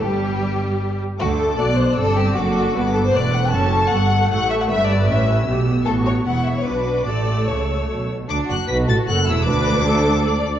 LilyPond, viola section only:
\new Staff \with { instrumentName = "Viola section" } { \time 3/4 \key d \mixolydian \tempo 4 = 154 << { g2~ g8 r8 | a'4 d''2 | a'4 b'4 b'4 | \key d \major a'8 a'2~ a'8 |
b'2 g'4 | fis'4 e'4 fis'4 | a'2~ a'8 r8 | r4 fis'4 a'4 |
b'4 a'4 d''4 | } \\ { r2. | a4 b4 c'4 | d'4 b4 a4 | cis'4 b8 a4.~ |
a4 cis'4 b4~ | b2 d'8 d'8 | a2~ a8 r8 | r2. |
r2. | } >> }